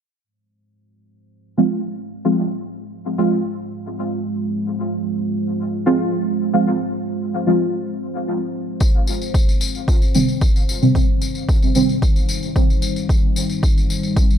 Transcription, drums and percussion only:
8.80 kick loud
8.80 tambourine medium
9.07 tambourine medium
9.22 tambourine soft
9.34 kick loud
9.34 tambourine medium
9.49 tambourine soft
9.61 tambourine medium
9.75 tambourine soft
9.88 kick loud
9.88 tambourine soft
10.02 tambourine soft
10.15 tambourine medium
10.28 tambourine soft
10.41 kick loud
10.41 tambourine medium
10.56 tambourine soft
10.69 tambourine medium
10.82 tambourine soft
10.95 kick loud
10.95 tambourine soft
11.22 tambourine medium
11.35 tambourine soft
11.49 kick loud
11.49 tambourine medium
11.63 tambourine soft
11.75 tambourine medium
11.89 tambourine soft
12.02 kick loud
12.02 tambourine medium
12.16 tambourine soft
12.29 tambourine medium
12.43 tambourine soft
12.56 kick loud
12.56 tambourine medium
12.70 tambourine soft
12.82 tambourine medium
12.96 tambourine soft
13.09 kick loud
13.09 tambourine soft
13.36 tambourine medium
13.50 tambourine soft
13.63 kick loud
13.63 tambourine medium
13.78 tambourine soft
13.90 tambourine medium
14.03 tambourine soft
14.16 kick loud
14.16 tambourine medium
14.31 tambourine soft

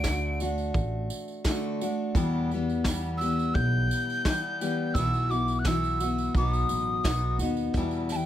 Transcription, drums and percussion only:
0.04 kick medium
0.04 snare medium
0.04 tambourine medium
0.40 tambourine medium
0.58 tambourine soft
0.74 kick medium
0.74 tambourine soft
1.10 tambourine medium
1.28 tambourine soft
1.44 kick medium
1.44 snare medium
1.44 tambourine medium
1.81 tambourine medium
2.15 kick medium
2.15 tambourine medium
2.51 tambourine soft
2.69 tambourine soft
2.84 kick medium
2.84 snare medium
2.84 tambourine medium
3.21 tambourine medium
3.39 tambourine soft
3.55 kick medium
3.55 tambourine soft
3.91 tambourine medium
4.10 tambourine soft
4.25 kick medium
4.25 snare loud
4.25 tambourine medium
4.61 tambourine medium
4.95 kick medium
4.95 tambourine medium
5.14 tambourine soft
5.31 tambourine soft
5.48 tambourine soft
5.64 kick medium
5.64 snare medium
5.64 tambourine medium
5.84 tambourine soft
6.00 tambourine medium
6.18 tambourine soft
6.35 kick medium
6.35 tambourine soft
6.53 tambourine soft
6.69 tambourine medium
7.04 kick medium
7.04 snare medium
7.04 tambourine loud
7.39 tambourine medium
7.57 tambourine soft
7.73 kick medium
7.73 snare soft
7.73 tambourine soft
7.91 tambourine soft
8.09 snare soft
8.09 tambourine medium

